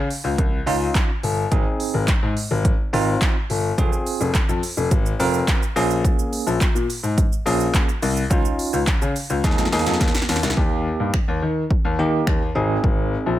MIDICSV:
0, 0, Header, 1, 4, 480
1, 0, Start_track
1, 0, Key_signature, -4, "major"
1, 0, Tempo, 566038
1, 1286, Time_signature, 4, 2, 24, 8
1, 11356, End_track
2, 0, Start_track
2, 0, Title_t, "Tine electric piano"
2, 0, Program_c, 0, 4
2, 563, Note_on_c, 0, 61, 84
2, 567, Note_on_c, 0, 63, 79
2, 568, Note_on_c, 0, 65, 94
2, 925, Note_off_c, 0, 61, 0
2, 927, Note_off_c, 0, 63, 0
2, 927, Note_off_c, 0, 65, 0
2, 1284, Note_on_c, 0, 60, 89
2, 1286, Note_on_c, 0, 63, 80
2, 1287, Note_on_c, 0, 68, 93
2, 1766, Note_off_c, 0, 60, 0
2, 1767, Note_off_c, 0, 63, 0
2, 1767, Note_off_c, 0, 68, 0
2, 2485, Note_on_c, 0, 60, 89
2, 2487, Note_on_c, 0, 63, 81
2, 2489, Note_on_c, 0, 65, 94
2, 2846, Note_off_c, 0, 60, 0
2, 2847, Note_off_c, 0, 63, 0
2, 2848, Note_off_c, 0, 65, 0
2, 3203, Note_on_c, 0, 60, 88
2, 3206, Note_on_c, 0, 65, 78
2, 3208, Note_on_c, 0, 68, 99
2, 3685, Note_off_c, 0, 60, 0
2, 3687, Note_off_c, 0, 65, 0
2, 3688, Note_off_c, 0, 68, 0
2, 4405, Note_on_c, 0, 60, 90
2, 4407, Note_on_c, 0, 65, 79
2, 4409, Note_on_c, 0, 70, 97
2, 4766, Note_off_c, 0, 60, 0
2, 4767, Note_off_c, 0, 65, 0
2, 4768, Note_off_c, 0, 70, 0
2, 4883, Note_on_c, 0, 58, 95
2, 4885, Note_on_c, 0, 61, 84
2, 4887, Note_on_c, 0, 68, 98
2, 5653, Note_off_c, 0, 58, 0
2, 5653, Note_off_c, 0, 61, 0
2, 5654, Note_off_c, 0, 68, 0
2, 6324, Note_on_c, 0, 58, 88
2, 6327, Note_on_c, 0, 61, 83
2, 6329, Note_on_c, 0, 68, 98
2, 6686, Note_off_c, 0, 58, 0
2, 6687, Note_off_c, 0, 61, 0
2, 6688, Note_off_c, 0, 68, 0
2, 7040, Note_on_c, 0, 61, 88
2, 7042, Note_on_c, 0, 63, 81
2, 7045, Note_on_c, 0, 65, 94
2, 7524, Note_off_c, 0, 61, 0
2, 7525, Note_off_c, 0, 63, 0
2, 7526, Note_off_c, 0, 65, 0
2, 8003, Note_on_c, 0, 58, 87
2, 8005, Note_on_c, 0, 63, 86
2, 8007, Note_on_c, 0, 68, 101
2, 8196, Note_off_c, 0, 58, 0
2, 8197, Note_off_c, 0, 63, 0
2, 8198, Note_off_c, 0, 68, 0
2, 8246, Note_on_c, 0, 58, 87
2, 8248, Note_on_c, 0, 63, 79
2, 8251, Note_on_c, 0, 68, 99
2, 8606, Note_off_c, 0, 58, 0
2, 8607, Note_off_c, 0, 63, 0
2, 8609, Note_off_c, 0, 68, 0
2, 8964, Note_on_c, 0, 58, 84
2, 8965, Note_on_c, 0, 63, 76
2, 8968, Note_on_c, 0, 67, 90
2, 9446, Note_off_c, 0, 58, 0
2, 9446, Note_off_c, 0, 63, 0
2, 9448, Note_off_c, 0, 67, 0
2, 10165, Note_on_c, 0, 58, 85
2, 10167, Note_on_c, 0, 63, 76
2, 10170, Note_on_c, 0, 67, 90
2, 10526, Note_off_c, 0, 58, 0
2, 10527, Note_off_c, 0, 63, 0
2, 10528, Note_off_c, 0, 67, 0
2, 10644, Note_on_c, 0, 60, 86
2, 10647, Note_on_c, 0, 63, 78
2, 10648, Note_on_c, 0, 68, 92
2, 11356, Note_off_c, 0, 60, 0
2, 11356, Note_off_c, 0, 63, 0
2, 11356, Note_off_c, 0, 68, 0
2, 11356, End_track
3, 0, Start_track
3, 0, Title_t, "Grand piano"
3, 0, Program_c, 1, 0
3, 204, Note_on_c, 1, 37, 86
3, 286, Note_off_c, 1, 37, 0
3, 325, Note_on_c, 1, 36, 93
3, 489, Note_off_c, 1, 36, 0
3, 564, Note_on_c, 1, 37, 93
3, 728, Note_off_c, 1, 37, 0
3, 1045, Note_on_c, 1, 31, 93
3, 1208, Note_off_c, 1, 31, 0
3, 1286, Note_on_c, 1, 32, 104
3, 1368, Note_off_c, 1, 32, 0
3, 1646, Note_on_c, 1, 32, 89
3, 1728, Note_off_c, 1, 32, 0
3, 1887, Note_on_c, 1, 44, 103
3, 1969, Note_off_c, 1, 44, 0
3, 2128, Note_on_c, 1, 32, 91
3, 2290, Note_off_c, 1, 32, 0
3, 2488, Note_on_c, 1, 32, 95
3, 2651, Note_off_c, 1, 32, 0
3, 2966, Note_on_c, 1, 31, 95
3, 3129, Note_off_c, 1, 31, 0
3, 3207, Note_on_c, 1, 29, 103
3, 3288, Note_off_c, 1, 29, 0
3, 3567, Note_on_c, 1, 29, 94
3, 3648, Note_off_c, 1, 29, 0
3, 3806, Note_on_c, 1, 41, 103
3, 3888, Note_off_c, 1, 41, 0
3, 4047, Note_on_c, 1, 29, 91
3, 4128, Note_off_c, 1, 29, 0
3, 4166, Note_on_c, 1, 32, 105
3, 4329, Note_off_c, 1, 32, 0
3, 4406, Note_on_c, 1, 29, 101
3, 4569, Note_off_c, 1, 29, 0
3, 4884, Note_on_c, 1, 34, 102
3, 5130, Note_off_c, 1, 34, 0
3, 5483, Note_on_c, 1, 34, 93
3, 5566, Note_off_c, 1, 34, 0
3, 5723, Note_on_c, 1, 46, 100
3, 5806, Note_off_c, 1, 46, 0
3, 5963, Note_on_c, 1, 44, 88
3, 6127, Note_off_c, 1, 44, 0
3, 6325, Note_on_c, 1, 34, 97
3, 6488, Note_off_c, 1, 34, 0
3, 6804, Note_on_c, 1, 36, 94
3, 6968, Note_off_c, 1, 36, 0
3, 7045, Note_on_c, 1, 37, 99
3, 7127, Note_off_c, 1, 37, 0
3, 7404, Note_on_c, 1, 37, 84
3, 7486, Note_off_c, 1, 37, 0
3, 7646, Note_on_c, 1, 49, 96
3, 7727, Note_off_c, 1, 49, 0
3, 7885, Note_on_c, 1, 37, 86
3, 7967, Note_off_c, 1, 37, 0
3, 8006, Note_on_c, 1, 39, 105
3, 8087, Note_off_c, 1, 39, 0
3, 8125, Note_on_c, 1, 41, 98
3, 8207, Note_off_c, 1, 41, 0
3, 8245, Note_on_c, 1, 39, 90
3, 8327, Note_off_c, 1, 39, 0
3, 8365, Note_on_c, 1, 41, 94
3, 8447, Note_off_c, 1, 41, 0
3, 8486, Note_on_c, 1, 39, 100
3, 8568, Note_off_c, 1, 39, 0
3, 8724, Note_on_c, 1, 39, 93
3, 8806, Note_off_c, 1, 39, 0
3, 8842, Note_on_c, 1, 36, 89
3, 8925, Note_off_c, 1, 36, 0
3, 8965, Note_on_c, 1, 39, 99
3, 9210, Note_off_c, 1, 39, 0
3, 9326, Note_on_c, 1, 43, 81
3, 9407, Note_off_c, 1, 43, 0
3, 9566, Note_on_c, 1, 39, 100
3, 9647, Note_off_c, 1, 39, 0
3, 9686, Note_on_c, 1, 51, 89
3, 9849, Note_off_c, 1, 51, 0
3, 10046, Note_on_c, 1, 39, 103
3, 10127, Note_off_c, 1, 39, 0
3, 10166, Note_on_c, 1, 51, 97
3, 10329, Note_off_c, 1, 51, 0
3, 10406, Note_on_c, 1, 39, 96
3, 10569, Note_off_c, 1, 39, 0
3, 10647, Note_on_c, 1, 32, 90
3, 10810, Note_off_c, 1, 32, 0
3, 10887, Note_on_c, 1, 32, 94
3, 11131, Note_off_c, 1, 32, 0
3, 11246, Note_on_c, 1, 34, 93
3, 11328, Note_off_c, 1, 34, 0
3, 11356, End_track
4, 0, Start_track
4, 0, Title_t, "Drums"
4, 89, Note_on_c, 9, 46, 85
4, 174, Note_off_c, 9, 46, 0
4, 326, Note_on_c, 9, 36, 120
4, 326, Note_on_c, 9, 42, 74
4, 410, Note_off_c, 9, 36, 0
4, 411, Note_off_c, 9, 42, 0
4, 568, Note_on_c, 9, 46, 75
4, 653, Note_off_c, 9, 46, 0
4, 806, Note_on_c, 9, 36, 106
4, 808, Note_on_c, 9, 39, 107
4, 808, Note_on_c, 9, 42, 63
4, 891, Note_off_c, 9, 36, 0
4, 892, Note_off_c, 9, 42, 0
4, 893, Note_off_c, 9, 39, 0
4, 1047, Note_on_c, 9, 46, 78
4, 1131, Note_off_c, 9, 46, 0
4, 1286, Note_on_c, 9, 36, 111
4, 1286, Note_on_c, 9, 42, 75
4, 1371, Note_off_c, 9, 36, 0
4, 1371, Note_off_c, 9, 42, 0
4, 1526, Note_on_c, 9, 46, 81
4, 1611, Note_off_c, 9, 46, 0
4, 1763, Note_on_c, 9, 39, 112
4, 1765, Note_on_c, 9, 42, 76
4, 1766, Note_on_c, 9, 36, 109
4, 1848, Note_off_c, 9, 39, 0
4, 1849, Note_off_c, 9, 42, 0
4, 1851, Note_off_c, 9, 36, 0
4, 2007, Note_on_c, 9, 46, 83
4, 2092, Note_off_c, 9, 46, 0
4, 2246, Note_on_c, 9, 42, 77
4, 2247, Note_on_c, 9, 36, 118
4, 2331, Note_off_c, 9, 36, 0
4, 2331, Note_off_c, 9, 42, 0
4, 2489, Note_on_c, 9, 46, 77
4, 2574, Note_off_c, 9, 46, 0
4, 2727, Note_on_c, 9, 36, 108
4, 2728, Note_on_c, 9, 42, 66
4, 2729, Note_on_c, 9, 39, 113
4, 2812, Note_off_c, 9, 36, 0
4, 2812, Note_off_c, 9, 42, 0
4, 2813, Note_off_c, 9, 39, 0
4, 2967, Note_on_c, 9, 46, 81
4, 3052, Note_off_c, 9, 46, 0
4, 3207, Note_on_c, 9, 36, 117
4, 3208, Note_on_c, 9, 42, 73
4, 3208, Note_on_c, 9, 82, 76
4, 3292, Note_off_c, 9, 36, 0
4, 3293, Note_off_c, 9, 42, 0
4, 3293, Note_off_c, 9, 82, 0
4, 3329, Note_on_c, 9, 82, 62
4, 3414, Note_off_c, 9, 82, 0
4, 3447, Note_on_c, 9, 46, 80
4, 3447, Note_on_c, 9, 82, 58
4, 3532, Note_off_c, 9, 46, 0
4, 3532, Note_off_c, 9, 82, 0
4, 3568, Note_on_c, 9, 82, 68
4, 3653, Note_off_c, 9, 82, 0
4, 3686, Note_on_c, 9, 36, 111
4, 3686, Note_on_c, 9, 39, 105
4, 3687, Note_on_c, 9, 42, 71
4, 3687, Note_on_c, 9, 82, 72
4, 3771, Note_off_c, 9, 36, 0
4, 3771, Note_off_c, 9, 39, 0
4, 3772, Note_off_c, 9, 42, 0
4, 3772, Note_off_c, 9, 82, 0
4, 3808, Note_on_c, 9, 82, 57
4, 3892, Note_off_c, 9, 82, 0
4, 3928, Note_on_c, 9, 46, 82
4, 3928, Note_on_c, 9, 82, 60
4, 4012, Note_off_c, 9, 46, 0
4, 4012, Note_off_c, 9, 82, 0
4, 4046, Note_on_c, 9, 82, 76
4, 4131, Note_off_c, 9, 82, 0
4, 4166, Note_on_c, 9, 36, 117
4, 4166, Note_on_c, 9, 42, 75
4, 4166, Note_on_c, 9, 82, 74
4, 4251, Note_off_c, 9, 36, 0
4, 4251, Note_off_c, 9, 42, 0
4, 4251, Note_off_c, 9, 82, 0
4, 4289, Note_on_c, 9, 82, 53
4, 4374, Note_off_c, 9, 82, 0
4, 4409, Note_on_c, 9, 46, 80
4, 4409, Note_on_c, 9, 82, 56
4, 4493, Note_off_c, 9, 46, 0
4, 4493, Note_off_c, 9, 82, 0
4, 4526, Note_on_c, 9, 82, 69
4, 4610, Note_off_c, 9, 82, 0
4, 4647, Note_on_c, 9, 36, 104
4, 4649, Note_on_c, 9, 39, 118
4, 4649, Note_on_c, 9, 42, 67
4, 4649, Note_on_c, 9, 82, 65
4, 4732, Note_off_c, 9, 36, 0
4, 4733, Note_off_c, 9, 42, 0
4, 4733, Note_off_c, 9, 82, 0
4, 4734, Note_off_c, 9, 39, 0
4, 4771, Note_on_c, 9, 82, 47
4, 4855, Note_off_c, 9, 82, 0
4, 4888, Note_on_c, 9, 46, 80
4, 4888, Note_on_c, 9, 82, 57
4, 4973, Note_off_c, 9, 46, 0
4, 4973, Note_off_c, 9, 82, 0
4, 5007, Note_on_c, 9, 82, 74
4, 5092, Note_off_c, 9, 82, 0
4, 5126, Note_on_c, 9, 36, 118
4, 5128, Note_on_c, 9, 42, 76
4, 5128, Note_on_c, 9, 82, 77
4, 5211, Note_off_c, 9, 36, 0
4, 5213, Note_off_c, 9, 42, 0
4, 5213, Note_off_c, 9, 82, 0
4, 5249, Note_on_c, 9, 82, 59
4, 5334, Note_off_c, 9, 82, 0
4, 5366, Note_on_c, 9, 46, 84
4, 5366, Note_on_c, 9, 82, 60
4, 5450, Note_off_c, 9, 46, 0
4, 5450, Note_off_c, 9, 82, 0
4, 5487, Note_on_c, 9, 82, 73
4, 5571, Note_off_c, 9, 82, 0
4, 5606, Note_on_c, 9, 36, 114
4, 5607, Note_on_c, 9, 39, 104
4, 5608, Note_on_c, 9, 42, 75
4, 5608, Note_on_c, 9, 82, 73
4, 5691, Note_off_c, 9, 36, 0
4, 5692, Note_off_c, 9, 39, 0
4, 5693, Note_off_c, 9, 42, 0
4, 5693, Note_off_c, 9, 82, 0
4, 5730, Note_on_c, 9, 82, 56
4, 5815, Note_off_c, 9, 82, 0
4, 5850, Note_on_c, 9, 46, 81
4, 5850, Note_on_c, 9, 82, 60
4, 5934, Note_off_c, 9, 46, 0
4, 5934, Note_off_c, 9, 82, 0
4, 5966, Note_on_c, 9, 82, 73
4, 6051, Note_off_c, 9, 82, 0
4, 6086, Note_on_c, 9, 36, 117
4, 6087, Note_on_c, 9, 42, 80
4, 6087, Note_on_c, 9, 82, 78
4, 6171, Note_off_c, 9, 36, 0
4, 6172, Note_off_c, 9, 42, 0
4, 6172, Note_off_c, 9, 82, 0
4, 6211, Note_on_c, 9, 82, 49
4, 6295, Note_off_c, 9, 82, 0
4, 6331, Note_on_c, 9, 46, 80
4, 6331, Note_on_c, 9, 82, 60
4, 6416, Note_off_c, 9, 46, 0
4, 6416, Note_off_c, 9, 82, 0
4, 6448, Note_on_c, 9, 82, 68
4, 6533, Note_off_c, 9, 82, 0
4, 6567, Note_on_c, 9, 36, 103
4, 6568, Note_on_c, 9, 39, 119
4, 6568, Note_on_c, 9, 42, 64
4, 6568, Note_on_c, 9, 82, 65
4, 6651, Note_off_c, 9, 36, 0
4, 6652, Note_off_c, 9, 42, 0
4, 6652, Note_off_c, 9, 82, 0
4, 6653, Note_off_c, 9, 39, 0
4, 6689, Note_on_c, 9, 82, 49
4, 6774, Note_off_c, 9, 82, 0
4, 6805, Note_on_c, 9, 46, 79
4, 6805, Note_on_c, 9, 82, 60
4, 6890, Note_off_c, 9, 46, 0
4, 6890, Note_off_c, 9, 82, 0
4, 6925, Note_on_c, 9, 82, 74
4, 7010, Note_off_c, 9, 82, 0
4, 7044, Note_on_c, 9, 36, 116
4, 7044, Note_on_c, 9, 42, 74
4, 7044, Note_on_c, 9, 82, 77
4, 7129, Note_off_c, 9, 36, 0
4, 7129, Note_off_c, 9, 42, 0
4, 7129, Note_off_c, 9, 82, 0
4, 7166, Note_on_c, 9, 82, 60
4, 7251, Note_off_c, 9, 82, 0
4, 7285, Note_on_c, 9, 46, 83
4, 7285, Note_on_c, 9, 82, 59
4, 7370, Note_off_c, 9, 46, 0
4, 7370, Note_off_c, 9, 82, 0
4, 7405, Note_on_c, 9, 82, 69
4, 7489, Note_off_c, 9, 82, 0
4, 7524, Note_on_c, 9, 39, 114
4, 7525, Note_on_c, 9, 36, 111
4, 7525, Note_on_c, 9, 42, 77
4, 7525, Note_on_c, 9, 82, 72
4, 7609, Note_off_c, 9, 39, 0
4, 7610, Note_off_c, 9, 36, 0
4, 7610, Note_off_c, 9, 42, 0
4, 7610, Note_off_c, 9, 82, 0
4, 7647, Note_on_c, 9, 82, 56
4, 7732, Note_off_c, 9, 82, 0
4, 7767, Note_on_c, 9, 46, 81
4, 7767, Note_on_c, 9, 82, 60
4, 7851, Note_off_c, 9, 46, 0
4, 7851, Note_off_c, 9, 82, 0
4, 7883, Note_on_c, 9, 82, 72
4, 7968, Note_off_c, 9, 82, 0
4, 8005, Note_on_c, 9, 36, 123
4, 8006, Note_on_c, 9, 42, 78
4, 8006, Note_on_c, 9, 82, 77
4, 8007, Note_on_c, 9, 38, 61
4, 8067, Note_off_c, 9, 38, 0
4, 8067, Note_on_c, 9, 38, 55
4, 8090, Note_off_c, 9, 36, 0
4, 8091, Note_off_c, 9, 42, 0
4, 8091, Note_off_c, 9, 82, 0
4, 8125, Note_off_c, 9, 38, 0
4, 8125, Note_on_c, 9, 38, 73
4, 8127, Note_on_c, 9, 82, 51
4, 8186, Note_off_c, 9, 38, 0
4, 8186, Note_on_c, 9, 38, 64
4, 8211, Note_off_c, 9, 82, 0
4, 8246, Note_off_c, 9, 38, 0
4, 8246, Note_on_c, 9, 38, 76
4, 8247, Note_on_c, 9, 46, 77
4, 8247, Note_on_c, 9, 82, 56
4, 8305, Note_off_c, 9, 38, 0
4, 8305, Note_on_c, 9, 38, 65
4, 8332, Note_off_c, 9, 46, 0
4, 8332, Note_off_c, 9, 82, 0
4, 8363, Note_on_c, 9, 82, 71
4, 8365, Note_off_c, 9, 38, 0
4, 8365, Note_on_c, 9, 38, 82
4, 8424, Note_off_c, 9, 38, 0
4, 8424, Note_on_c, 9, 38, 71
4, 8448, Note_off_c, 9, 82, 0
4, 8485, Note_off_c, 9, 38, 0
4, 8485, Note_on_c, 9, 38, 89
4, 8486, Note_on_c, 9, 36, 108
4, 8486, Note_on_c, 9, 42, 62
4, 8486, Note_on_c, 9, 82, 64
4, 8544, Note_off_c, 9, 38, 0
4, 8544, Note_on_c, 9, 38, 77
4, 8571, Note_off_c, 9, 36, 0
4, 8571, Note_off_c, 9, 42, 0
4, 8571, Note_off_c, 9, 82, 0
4, 8604, Note_off_c, 9, 38, 0
4, 8604, Note_on_c, 9, 38, 96
4, 8604, Note_on_c, 9, 82, 48
4, 8665, Note_off_c, 9, 38, 0
4, 8665, Note_on_c, 9, 38, 80
4, 8689, Note_off_c, 9, 82, 0
4, 8724, Note_on_c, 9, 46, 83
4, 8724, Note_on_c, 9, 82, 56
4, 8725, Note_off_c, 9, 38, 0
4, 8725, Note_on_c, 9, 38, 105
4, 8784, Note_off_c, 9, 38, 0
4, 8784, Note_on_c, 9, 38, 88
4, 8809, Note_off_c, 9, 46, 0
4, 8809, Note_off_c, 9, 82, 0
4, 8846, Note_on_c, 9, 82, 72
4, 8847, Note_off_c, 9, 38, 0
4, 8847, Note_on_c, 9, 38, 108
4, 8904, Note_off_c, 9, 38, 0
4, 8904, Note_on_c, 9, 38, 99
4, 8931, Note_off_c, 9, 82, 0
4, 8965, Note_on_c, 9, 36, 104
4, 8989, Note_off_c, 9, 38, 0
4, 9050, Note_off_c, 9, 36, 0
4, 9444, Note_on_c, 9, 26, 101
4, 9446, Note_on_c, 9, 36, 103
4, 9529, Note_off_c, 9, 26, 0
4, 9531, Note_off_c, 9, 36, 0
4, 9926, Note_on_c, 9, 36, 114
4, 10011, Note_off_c, 9, 36, 0
4, 10406, Note_on_c, 9, 36, 97
4, 10407, Note_on_c, 9, 26, 107
4, 10491, Note_off_c, 9, 36, 0
4, 10492, Note_off_c, 9, 26, 0
4, 10886, Note_on_c, 9, 36, 105
4, 10971, Note_off_c, 9, 36, 0
4, 11356, End_track
0, 0, End_of_file